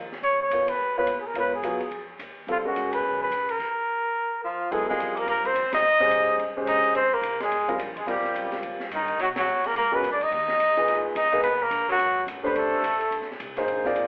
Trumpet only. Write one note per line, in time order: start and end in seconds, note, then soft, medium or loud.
0.23 0.39 C#5 medium
0.42 0.71 C#5 medium
0.69 0.97 B4 medium
0.99 1.20 B4 medium
1.21 1.28 G#4 medium
1.27 1.36 A#4 medium
1.39 1.53 B4 medium
1.55 2.06 G#4 medium
2.52 2.58 F4 medium
2.67 2.95 F#4 medium
2.93 3.21 B4 loud
3.23 3.52 B4 medium
3.51 4.44 A#4 medium
4.44 4.73 F4 medium
4.72 4.88 G#4 medium
4.89 5.21 G#4 medium
5.19 5.29 A#4 medium
5.30 5.48 A#4 medium
5.46 5.73 C5 medium
5.75 6.53 D#5 loud
6.68 6.94 D#5 loud
6.96 7.16 C5 loud
7.14 7.41 A#4 medium
7.44 7.78 G#4 medium
8.00 8.08 G#4 medium
8.10 8.62 G4 medium
8.95 9.20 D#4 medium
9.23 9.29 F#4 medium
9.39 9.69 F#4 medium
9.67 9.77 A#4 medium
9.78 9.97 A#4 medium
9.95 10.12 B4 loud
10.13 10.25 D5 medium
10.24 11.06 D#5 loud
11.17 11.42 D#5 loud
11.43 11.64 B4 loud
11.63 11.90 A#4 medium
11.92 12.27 F#4 loud
12.46 12.56 B4 medium
12.57 13.36 A4 medium